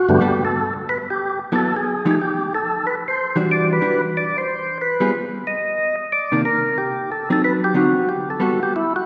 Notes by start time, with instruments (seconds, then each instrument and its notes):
0.09 tonewheel organ G2 D3 A3 B3 F#4 G4
0.21 hollow-body jazz guitar G3 B3 F#4 A4
0.45 tonewheel organ A4
0.89 tonewheel organ B4
1.10 tonewheel organ G4
1.52 hollow-body jazz guitar F#3 B3 E4 A4, tonewheel organ A4
1.76 tonewheel organ G#4
2.05 hollow-body jazz guitar F3 A3 D#4 G4
2.11 tonewheel organ G#4
2.21 tonewheel organ G4
2.55 tonewheel organ A4
2.87 tonewheel organ B4
3.08 tonewheel organ C5
3.36 hollow-body jazz guitar E3 G3 D4 F#4
3.51 tonewheel organ D5
3.73 tonewheel organ B4
3.81 hollow-body jazz guitar E3 G3 D4 F#4
4.17 tonewheel organ D5
4.38 tonewheel organ C5
4.81 tonewheel organ B4
5.00 hollow-body jazz guitar G3 B3 F4 G#4
5.47 tonewheel organ D#5
6.12 tonewheel organ D5
6.32 hollow-body jazz guitar C3 D#3 A#3 D4
6.45 tonewheel organ A#4
6.78 tonewheel organ G4
7.12 tonewheel organ A4
7.30 hollow-body jazz guitar F#3 C4 D#4, tonewheel organ A4
7.44 tonewheel organ B4
7.64 tonewheel organ G4
7.74 hollow-body jazz guitar D3 F#3 C4 D#4, tonewheel organ F#4
8.09 tonewheel organ G4
8.30 tonewheel organ A4
8.40 hollow-body jazz guitar G3 B3 F#4 A4, tonewheel organ F#4
8.63 tonewheel organ G4
8.76 tonewheel organ E4
8.96 tonewheel organ F#4